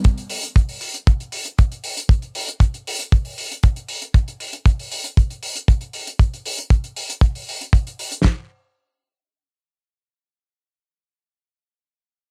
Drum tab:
HH |xxoxxooxxxoxxxox|xxoxxxoxxooxxxox|xxoxxooxxxoxxxox|xxoxxxoxxooxxxox|
SD |----------------|----------------|----------------|----------------|
BD |o---o---o---o---|o---o---o---o---|o---o---o---o---|o---o---o---o---|

HH |----------------|----------------|
SD |o---------------|----------------|
BD |o---------------|----------------|